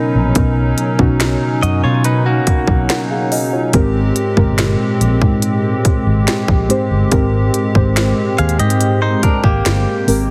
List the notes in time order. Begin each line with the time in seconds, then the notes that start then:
Already playing: B2 F#3 B3 C#4 D#4 A#4 B4
0.15 A#1
0.35 B1 B2 B3 C#4 D#4 A#4, kick, closed hi-hat
0.78 closed hi-hat
0.98 B1 B2 B3 C#4 D#4 F#4, kick
1.20 snare, closed hi-hat
1.63 F#2 F#4 D#5, closed hi-hat
1.84 B2 F4 C#5
2.04 D#4 B4, closed hi-hat
2.26 A#3 F#4
2.47 muted fingered electric bass stroke, kick, closed hi-hat
2.67 B1, kick
2.89 A#4 F#5, snare, closed hi-hat
3.11 G#4 F5
3.32 F#4 D#5, open hi-hat
3.53 F4 C#5
3.73 G#1 G#2 G#3 C4 G4 A#4, kick, closed hi-hat
4.16 closed hi-hat
4.36 G1 A#2 G#3 C4 G4 A#4, kick
4.58 snare, closed hi-hat
5.01 A#1, closed hi-hat
5.22 G#2, kick
5.42 closed hi-hat
5.85 muted fingered electric bass stroke, kick, closed hi-hat
6.06 G#1
6.28 snare, closed hi-hat
6.48 A#1, kick
6.69 G#2 G#3 C4 G4 C5, closed hi-hat
6.91 G1
7.11 G#1 G#2 G#3 C4 G4 A#4, kick, closed hi-hat
7.54 closed hi-hat
7.74 G#1 G#2 G#3 C4 G4 C5, kick
7.97 snare, closed hi-hat
8.38 D#2 G#4 F5, closed hi-hat
8.49 closed hi-hat
8.59 G#2 G4 D#5, closed hi-hat
8.70 closed hi-hat
8.81 closed hi-hat
9.02 D#4 C5
9.23 D4 A#4, muted fingered electric bass stroke, kick, closed hi-hat
9.44 G#1 A#3 G4, kick
9.66 G1, snare, closed hi-hat
10.07 G#1 G#2 G#3 C4 G4 A#4, open hi-hat